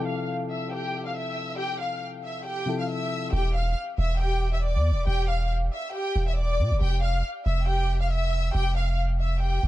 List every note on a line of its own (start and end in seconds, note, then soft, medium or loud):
0.00 2.62 C3 medium
0.00 2.63 F3 medium
0.00 2.64 E4 medium
0.00 2.65 A4 medium
0.07 0.27 F5 medium
0.07 0.27 F6 medium
0.50 0.70 E5 medium
0.50 0.71 E6 medium
0.72 1.04 G4 medium
0.72 1.03 G5 medium
1.06 1.15 F5 medium
1.06 1.15 F6 medium
1.16 1.57 E5 medium
1.16 1.57 E6 medium
1.59 1.79 G4 medium
1.59 1.79 G5 loud
1.81 2.01 F5 medium
1.81 2.01 F6 medium
2.24 2.44 E5 medium
2.24 2.45 E6 medium
2.45 2.77 G4 medium
2.45 2.77 G5 medium
2.66 3.32 C3 soft
2.66 3.33 F3 soft
2.66 3.33 E4 soft
2.66 3.34 A4 medium
2.79 2.89 F5 medium
2.79 2.89 F6 medium
2.90 3.31 E5 medium
2.90 3.31 E6 medium
3.33 3.75 E1 loud
3.33 3.53 G4 medium
3.33 3.53 G5 medium
3.55 3.75 F5 medium
3.55 3.75 F6 medium
3.98 4.77 E1 loud
3.98 4.18 E5 medium
3.98 4.19 E6 medium
4.20 4.52 G4 medium
4.20 4.51 G5 medium
4.53 4.63 E5 medium
4.53 4.63 E6 medium
4.64 5.05 D5 medium
4.64 5.05 D6 medium
4.75 4.93 E2 loud
4.91 5.06 E1 loud
5.07 5.70 E1 loud
5.07 5.27 G4 medium
5.07 5.27 G5 loud
5.29 5.49 F5 medium
5.29 5.49 F6 medium
5.73 5.92 E5 medium
5.73 5.93 E6 medium
5.94 6.26 G4 medium
5.94 6.25 G5 medium
6.16 6.61 E1 loud
6.28 6.37 E5 medium
6.28 6.37 E6 medium
6.37 6.78 D5 medium
6.37 6.79 D6 medium
6.59 6.72 B2 loud
6.71 6.80 E1 loud
6.81 7.23 F1 loud
6.81 7.01 G4 medium
6.81 7.01 G5 loud
7.03 7.23 F5 medium
7.03 7.23 F6 medium
7.46 8.51 F1 loud
7.46 7.66 E5 medium
7.46 7.66 E6 medium
7.68 7.99 G4 medium
7.68 7.99 G5 medium
8.01 8.10 F5 medium
8.01 8.11 F6 medium
8.12 8.52 E5 medium
8.12 8.53 E6 medium
8.54 9.59 F1 loud
8.54 8.75 G4 medium
8.54 8.74 G5 loud
8.77 8.97 F5 medium
8.77 8.97 F6 medium
9.20 9.40 E5 medium
9.20 9.40 E6 medium
9.41 9.68 G4 medium
9.41 9.68 G5 medium
9.63 9.68 F1 loud